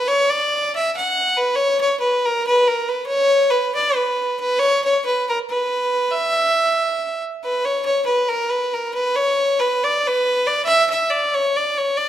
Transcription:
fiddle
0.07 C#5
0.30 D5
0.75 E5
0.96 F#5
1.37 B4
1.55 C#5
1.80 C#5
2.00 B4
2.25 A#4
2.47 B4
2.68 A#4
2.88 B4
3.06 C#5
3.50 B4
3.75 D5
3.95 B4
4.40 B4
4.59 C#5
4.84 C#5
5.05 B4
5.29 A#4
5.49 B4
6.11 E5
7.44 B4
7.65 C#5
7.85 C#5
8.05 B4
8.28 A#4
8.49 B4
8.73 A#4
8.94 B4
9.15 C#5
9.59 B4
9.83 D5
10.07 B4
10.47 D5
10.65 E5
10.90 E5
11.10 D5
11.34 C#5
11.56 D5
11.77 C#5
11.97 D5

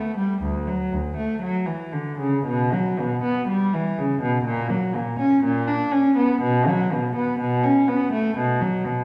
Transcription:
cello
Already playing: A3
0.18 G3
0.42 D2
0.67 F#3
0.92 D2
1.17 A3
1.42 F#3
1.66 E3
1.92 D3
2.19 C#3
2.46 B2
2.73 F#3
3.00 B2
3.23 B3
3.48 G3
3.74 E3
3.98 C#3
4.22 B2
4.45 A#2
4.70 F#3
4.95 A#2
5.20 C#4
5.44 A#2
5.68 D4
5.91 C#4
6.17 B3
6.42 B2
6.67 F#3
6.92 B2
7.16 B3
7.40 B2
7.63 C#4
7.88 B3
8.12 A3
8.37 B2
8.61 F#3
8.85 B2

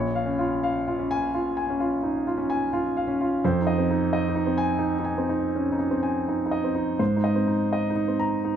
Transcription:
grand piano
Already playing: A#1 C#5
0.15 F5
0.26 C#4
0.39 F4
0.63 F5
0.87 F4
0.99 C#4
1.11 G#5
1.34 F4
1.57 G#5
1.70 C#4
1.80 F4
2.03 D#4
2.27 F4
2.37 C#4
2.50 G#5
2.73 F4
2.97 F5
3.08 C#4
3.21 F4
3.45 F2 C5
3.62 D#4
3.67 D#5
3.78 C4
3.91 D#4
4.13 D#5
4.29 D#4
4.35 D#4
4.46 C4
4.58 G#5
4.79 D#4
4.99 D#4
5.05 G#5
5.18 C4
5.29 D#4
5.55 C#4
5.72 D#4
5.79 D#4
5.91 C4
6.03 G#5
6.28 D#4
6.46 D#4
6.51 D#5
6.64 C4
6.75 D#4
6.99 G#2 C5
7.17 D#4
7.24 D#5
7.35 C4
7.47 D#4
7.73 D#5
7.90 D#4
7.96 D#4
8.08 C4
8.20 A#5
8.44 D#4

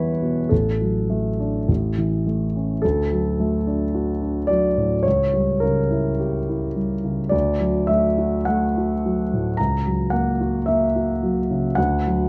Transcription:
grand piano
Already playing: E2 E3 G3 B3 E4 B4 C#5
0.22 B2
0.49 A1 A4
0.81 F#3
1.10 A3
1.40 D4
1.69 A1
1.98 E3
2.26 A3
2.56 C#4
2.82 D2 A4
3.12 F#3
3.40 A3
3.67 D4
3.94 F#4
4.22 D4
4.47 F#3 D5
4.78 A2
5.03 C#2 C#5
5.33 G3
5.60 C#3 A#4
5.90 E4
6.20 G4
6.49 E4
6.75 G3
7.04 C#3
7.29 D2 D5
7.60 F#3
7.87 A3 E5
8.18 F#4
8.45 A3 F#5
8.77 F#4
9.05 F#3
9.34 A2
9.57 C#2 A#5
9.86 F#3
10.10 A#3 F#5
10.41 F#4
10.66 A#3 E5
10.96 F#4
11.23 F#3
11.51 C#3
11.75 D2 F#5
12.07 F#3

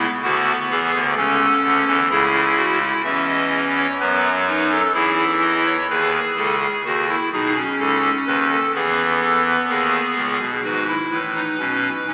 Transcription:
pipe organ
Already playing: B3
0.23 D2 D3 B3 F#4
0.71 E2 E3 G#4
0.94 D2 D3
1.17 C#2 C#3 C#4 A4
1.64 D2 D3
1.87 E2 E3
2.11 C#2 C#3 E4 G#4
2.57 F#4
2.81 E4
3.04 E2 E3 C#4 E5
3.29 D#5
3.76 C#5
4.00 F#2 F#3 B3 B4
4.48 D#4 B4
4.71 A4
4.94 E2 E3 E4 G#4
5.41 D#5
5.66 C#5
5.90 D#2 D#3 G#4 B4
6.37 C#2 C#3 A4
6.61 G#4
6.85 D#2 D#3 F#4
7.09 E4
7.33 B1 B2 D#4 G#4
7.56 C#4
7.79 C#2 C#3 A4
8.27 D#2 D#3 B4
8.51 A4
8.75 E2 E3 B3 G#4
9.23 A4
9.46 B4
9.69 D#2 D#3 G#4
10.17 C#2 C#3
10.40 B1 B2
10.64 G#1 G#2 F#4 B4
10.88 E4
11.11 A1 A2 B4
11.36 D#4
11.59 B1 B2 C#4
12.07 G#1 G#2 C#4

